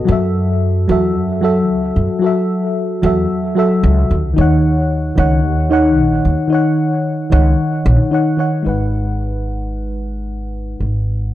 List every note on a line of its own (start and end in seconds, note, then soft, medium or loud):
0.00 0.11 B3 medium
0.00 0.07 F#4 medium
0.00 0.09 A4 medium
0.00 0.11 D#5 loud
0.05 0.84 F#2 loud
0.05 0.84 F#3 medium
0.05 0.85 F#4 medium
0.09 0.87 A4 medium
0.09 0.88 E5 medium
0.88 1.15 E2 medium
0.88 1.39 F#3 medium
0.88 1.40 F#4 medium
0.88 1.40 A4 medium
0.88 1.41 E5 loud
1.15 1.69 F#2 medium
1.41 1.52 F#3 loud
1.41 1.53 F#4 medium
1.41 1.53 A4 medium
1.41 1.54 E5 loud
1.69 1.89 C#2 medium
1.96 2.07 F#2 medium
2.19 2.99 F#3 medium
2.19 3.00 F#4 medium
2.24 3.01 A4 medium
2.24 3.02 E5 loud
3.02 3.24 E2 loud
3.02 3.53 F#3 medium
3.02 3.54 F#4 medium
3.02 3.55 A4 medium
3.02 3.55 E5 loud
3.55 3.66 F#3 loud
3.55 3.67 F#4 medium
3.55 3.68 A4 medium
3.55 3.68 E5 loud
3.83 4.04 C#2 loud
4.11 4.25 D#2 medium
4.25 4.34 C#2 loud
4.33 5.13 D#3 medium
4.33 5.14 D#4 medium
4.38 5.13 D#2 medium
4.38 5.15 C#5 medium
4.38 5.17 F#5 loud
5.16 5.45 C#2 loud
5.16 5.67 D#3 medium
5.16 5.68 D#4 medium
5.16 5.69 C#5 medium
5.16 5.69 F#5 loud
5.45 5.98 D#2 medium
5.70 5.81 D#3 loud
5.70 5.81 D#4 medium
5.70 5.82 C#5 medium
5.70 5.83 F#5 loud
5.98 6.18 A#1 medium
6.25 6.35 D#2 medium
6.48 7.27 D#3 medium
6.48 7.28 D#4 medium
6.53 7.30 C#5 medium
6.53 7.30 F#5 loud
7.30 7.52 C#2 loud
7.30 7.82 D#3 medium
7.30 7.82 D#4 medium
7.30 7.83 C#5 medium
7.30 7.83 F#5 loud
7.86 7.96 A#1 loud
8.11 8.35 D#3 medium
8.11 8.36 D#4 medium
8.11 8.37 C#5 medium
8.11 8.37 F#5 medium
8.37 8.62 D#3 medium
8.37 8.63 D#4 medium
8.37 8.63 C#5 medium
8.37 8.64 F#5 medium
8.62 10.78 G#1 medium
8.62 11.34 G#3 medium
8.62 11.34 D#4 medium
8.67 11.34 B4 medium
8.67 11.34 F#5 medium
10.80 11.34 G#1 medium